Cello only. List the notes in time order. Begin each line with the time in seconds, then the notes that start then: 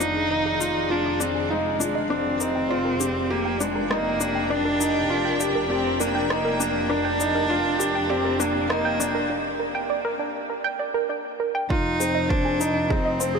Already playing: D#4
0.92 D4
1.21 C4
1.52 G#3
2.11 C4
3.31 A#3
3.61 G#3
3.91 A#3
4.51 D4
5.71 C4
6.00 A#3
6.31 A#3
6.91 D4
8.10 C4
8.41 A#3
8.71 A#3
11.70 D#4
12.30 D4
12.90 C4